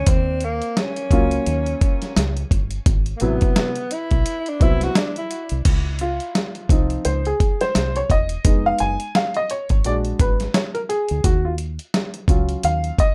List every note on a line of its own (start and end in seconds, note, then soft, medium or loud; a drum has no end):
0.00 0.10 C#4 medium
0.07 0.60 D#2 loud
0.07 0.46 C4 loud
0.07 kick loud
0.07 closed hi-hat loud
0.41 0.80 A#3 medium
0.41 closed hi-hat medium
0.62 closed hi-hat soft
0.77 2.52 C#4 loud
0.77 snare loud
0.77 closed hi-hat medium
0.96 closed hi-hat soft
1.11 1.38 C#2 medium
1.11 2.10 F#3 medium
1.11 2.11 A#3 medium
1.11 2.11 C#4 medium
1.11 2.12 F4 medium
1.11 kick loud
1.11 closed hi-hat medium
1.31 closed hi-hat soft
1.46 1.73 D#2 medium
1.46 closed hi-hat medium
1.66 closed hi-hat soft
1.81 kick loud
1.81 closed hi-hat medium
2.02 snare soft
2.02 closed hi-hat medium
2.17 2.43 C#2 loud
2.17 snare loud
2.17 closed hi-hat medium
2.37 closed hi-hat soft
2.51 2.78 G1 medium
2.51 kick medium
2.51 closed hi-hat medium
2.71 closed hi-hat soft
2.86 3.13 G#1 loud
2.86 kick loud
2.86 closed hi-hat loud
3.06 closed hi-hat soft
3.16 3.24 A#3 medium
3.16 closed hi-hat medium
3.21 3.37 A1 medium
3.21 3.73 C3 medium
3.21 3.72 F#3 medium
3.21 3.73 B3 medium
3.21 3.94 B3 medium
3.21 3.74 E4 medium
3.41 kick medium
3.41 closed hi-hat medium
3.56 snare loud
3.56 closed hi-hat medium
3.76 closed hi-hat soft
3.91 4.50 E4 medium
3.91 closed hi-hat medium
4.11 4.23 B1 medium
4.11 kick medium
4.11 closed hi-hat soft
4.26 closed hi-hat medium
4.46 4.64 D4 loud
4.46 closed hi-hat soft
4.60 4.88 C2 medium
4.60 4.87 F#3 medium
4.60 4.87 B3 medium
4.60 4.87 C4 medium
4.60 4.88 E4 medium
4.60 4.85 E4 loud
4.60 kick loud
4.60 closed hi-hat medium
4.81 4.99 F#4 loud
4.81 snare soft
4.81 closed hi-hat medium
4.95 5.17 D4 loud
4.95 snare loud
4.95 closed hi-hat medium
5.16 5.63 E4 medium
5.16 closed hi-hat soft
5.31 closed hi-hat medium
5.49 5.62 C2 medium
5.49 closed hi-hat medium
5.65 6.19 C#2 medium
5.65 kick loud
5.65 closed hi-hat medium
5.65 crash medium
5.99 7.09 F4 medium
5.99 closed hi-hat medium
6.20 closed hi-hat soft
6.35 snare loud
6.35 closed hi-hat medium
6.55 closed hi-hat soft
6.69 6.97 C2 medium
6.69 7.19 F3 soft
6.69 7.19 C4 medium
6.69 7.19 D#4 medium
6.69 kick loud
6.69 closed hi-hat medium
6.90 closed hi-hat soft
7.05 7.32 C#2 loud
7.05 7.24 C5 medium
7.05 closed hi-hat medium
7.25 7.59 G#4 medium
7.25 closed hi-hat soft
7.40 kick medium
7.40 closed hi-hat medium
7.61 7.97 C5 medium
7.61 snare soft
7.61 closed hi-hat medium
7.75 8.02 C2 medium
7.75 snare loud
7.75 closed hi-hat medium
7.96 8.11 C#5 medium
7.96 closed hi-hat soft
8.10 8.36 E1 medium
8.10 8.68 D#5 medium
8.10 kick medium
8.10 closed hi-hat medium
8.29 closed hi-hat medium
8.44 8.71 F1 medium
8.44 8.93 G#3 medium
8.44 8.93 B3 soft
8.44 8.94 D#4 medium
8.44 kick loud
8.44 closed hi-hat loud
8.66 8.81 F5 loud
8.79 8.96 F#1 medium
8.79 9.16 G#5 loud
8.79 closed hi-hat medium
9.00 closed hi-hat medium
9.15 9.37 F5 medium
9.15 snare loud
9.15 closed hi-hat medium
9.34 9.51 D#5 medium
9.34 closed hi-hat soft
9.50 9.83 C#5 medium
9.50 closed hi-hat medium
9.69 9.81 G#1 loud
9.69 kick medium
9.69 closed hi-hat soft
9.84 10.12 A#1 loud
9.84 10.33 G#3 medium
9.84 10.33 D4 medium
9.84 10.34 F#4 medium
9.84 9.94 D5 medium
9.84 closed hi-hat medium
10.05 closed hi-hat soft
10.19 10.46 G#1 medium
10.19 10.56 B4 medium
10.19 kick loud
10.19 closed hi-hat medium
10.40 snare soft
10.40 closed hi-hat medium
10.54 10.59 C#5 medium
10.54 snare loud
10.54 closed hi-hat medium
10.74 10.79 A#4 medium
10.74 closed hi-hat soft
10.89 11.22 G#4 medium
10.89 closed hi-hat medium
11.09 11.21 D2 medium
11.09 closed hi-hat medium
11.24 11.77 D#2 loud
11.24 11.45 F#4 medium
11.24 kick loud
11.24 closed hi-hat medium
11.45 11.53 F4 medium
11.58 closed hi-hat medium
11.79 closed hi-hat soft
11.94 snare loud
11.94 closed hi-hat medium
12.14 closed hi-hat soft
12.28 12.55 C#2 medium
12.28 13.15 F#3 medium
12.28 13.15 C#4 soft
12.28 13.15 F4 medium
12.28 kick loud
12.28 closed hi-hat medium
12.49 closed hi-hat soft
12.63 12.90 D#2 medium
12.63 12.97 F5 loud
12.63 closed hi-hat medium
12.84 closed hi-hat soft
12.98 13.15 D#5 medium
12.98 kick loud
12.98 closed hi-hat medium